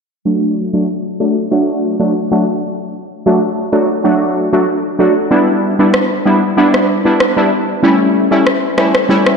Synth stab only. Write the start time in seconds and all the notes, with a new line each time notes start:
0.25 F#3 A3 D4 F#4
0.73 F#3 A3 D4 F#4
1.20 F#3 A3 D4 F#4
1.51 F#3 A3 D4 F#4
2.00 F#3 A3 D4 F#4
2.31 F#3 A3 D4 F#4
3.26 F#3 A3 D4 F#4
3.72 F#3 A3 D4 F#4
4.04 F#3 A3 D4 F#4
4.53 F#3 A3 D4 F#4
4.99 F#3 A3 D4 F#4
5.31 G3 B3 D4 E4
5.79 G3 B3 D4 E4
6.26 G3 B3 D4 E4
6.57 G3 B3 D4 E4
7.05 G3 B3 D4 E4
7.37 G3 B3 D4 E4
7.83 G3 A3 C#4 E4
8.31 G3 A3 C#4 E4
8.78 G3 A3 C#4 E4
9.09 G3 A3 C#4 E4